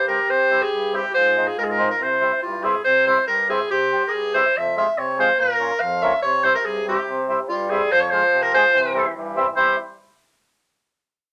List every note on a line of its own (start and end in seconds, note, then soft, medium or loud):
0.00 0.19 G2 medium
0.00 1.17 G4 loud
0.08 0.19 G3 medium
0.08 0.19 C4 medium
0.08 0.19 G4 medium
0.08 0.31 A#4 medium
0.29 0.61 C3 medium
0.29 0.64 C5 loud
0.50 0.61 G3 medium
0.50 0.61 C4 medium
0.50 0.62 E4 medium
0.62 0.97 G#4 loud
0.72 1.04 G2 medium
0.93 1.04 G3 medium
0.93 1.04 C4 medium
0.93 1.04 E4 medium
0.93 1.13 G4 medium
1.14 1.46 G#2 medium
1.14 1.99 F4 medium
1.14 1.48 C5 loud
1.36 1.47 G#3 medium
1.36 1.47 C4 medium
1.36 1.47 D#4 medium
1.47 1.58 G#4 medium
1.57 1.89 G#2 medium
1.57 1.65 A#4 medium
1.64 1.72 G#4 medium
1.71 1.90 A#4 medium
1.78 1.89 G#3 medium
1.78 1.89 C4 medium
1.78 1.90 D#4 medium
1.91 2.04 A#4 medium
2.00 2.32 C3 medium
2.00 2.40 E4 medium
2.00 2.42 C5 medium
2.20 2.32 G3 medium
2.20 2.32 C4 medium
2.20 2.32 E4 medium
2.42 2.75 G2 medium
2.42 2.82 E4 medium
2.42 2.65 F4 medium
2.63 2.74 G3 medium
2.63 2.75 C4 medium
2.63 2.75 E4 medium
2.63 2.83 G#4 medium
2.84 3.17 C3 medium
2.84 3.05 C5 loud
3.07 3.17 G3 medium
3.07 3.18 C4 medium
3.07 3.18 E4 medium
3.07 3.26 C5 loud
3.28 3.60 G2 medium
3.28 3.47 A#4 medium
3.49 3.60 G3 medium
3.49 3.60 C4 medium
3.49 3.60 E4 medium
3.49 3.69 G#4 medium
3.71 4.02 C3 medium
3.71 4.09 G4 loud
3.92 4.02 G3 medium
3.92 4.02 C4 medium
3.92 4.03 G4 medium
4.07 4.35 G#4 loud
4.07 4.11 A#4 medium
4.14 4.45 G2 medium
4.34 4.44 G3 medium
4.34 4.45 C4 medium
4.34 4.45 E4 medium
4.34 4.59 C5 loud
4.56 4.87 F2 medium
4.56 4.77 E5 loud
4.76 4.87 G#3 medium
4.76 4.87 C4 medium
4.76 4.87 F4 medium
4.76 5.00 E5 loud
4.97 5.29 C3 medium
4.97 5.19 C#5 loud
5.18 5.29 G#3 medium
5.18 5.29 C4 medium
5.18 5.30 F4 medium
5.18 5.41 C5 medium
5.38 5.70 A#2 medium
5.38 5.81 A#4 loud
5.59 5.70 A#3 medium
5.59 5.71 C#4 medium
5.59 5.71 F4 medium
5.80 6.13 F2 medium
5.80 6.04 F5 loud
6.02 6.13 A#3 medium
6.02 6.13 C#4 medium
6.02 6.13 F4 medium
6.02 6.22 E5 loud
6.22 7.51 C3 medium
6.22 6.55 C3 medium
6.22 6.46 C#5 loud
6.44 6.55 G3 medium
6.44 6.55 C4 medium
6.44 6.55 E4 medium
6.44 6.54 C5 loud
6.55 6.67 A#4 medium
6.65 6.97 G2 medium
6.65 6.86 G#4 loud
6.88 6.98 G3 medium
6.88 6.98 C4 medium
6.88 6.98 E4 medium
6.88 7.24 G4 medium
7.09 7.39 C3 medium
7.28 7.39 G3 medium
7.28 7.39 C4 medium
7.28 7.39 E4 medium
7.49 7.81 G2 medium
7.49 7.93 G3 loud
7.49 7.71 F4 medium
7.70 7.81 G3 medium
7.70 7.81 C4 medium
7.70 7.81 E4 medium
7.70 7.93 G#4 loud
7.92 8.23 F2 medium
7.92 8.76 F3 loud
7.92 8.02 C5 loud
8.01 8.12 C#5 medium
8.11 8.22 G#3 medium
8.11 8.23 C4 medium
8.11 8.23 F4 medium
8.11 8.44 C5 loud
8.33 8.64 C3 medium
8.42 8.53 A#4 medium
8.54 8.64 G#3 medium
8.54 8.64 C4 medium
8.54 8.65 G#4 medium
8.54 9.12 C5 loud
8.74 9.05 C3 medium
8.74 9.16 E3 loud
8.94 9.05 G3 medium
8.94 9.05 C4 medium
8.94 9.06 E4 medium
9.16 9.47 G2 medium
9.16 9.55 E3 medium
9.36 9.47 G3 medium
9.36 9.47 C4 medium
9.36 9.47 E4 medium
9.56 9.77 E3 medium
9.56 9.77 G3 medium
9.56 9.76 C4 medium
9.56 9.76 E4 medium
9.56 9.76 C5 loud